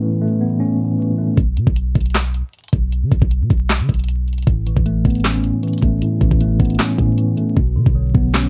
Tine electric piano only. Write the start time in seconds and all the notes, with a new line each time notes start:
Already playing: A2 E3 A3 B3 C#4
0.02 E3
0.22 A3
0.41 B3
0.60 C#4
0.79 A2
0.99 E3
1.18 A3
4.47 A2
4.67 E3
4.86 A3
5.05 B3
5.24 C#4
5.43 A2
5.63 E3
5.83 A3
6.02 A2
6.21 E3
6.41 A3
6.60 B3
6.79 C#4
6.99 A2
7.18 E3
7.37 A3
7.56 B2
7.76 D3
7.95 F#3
8.15 B3
8.34 C#4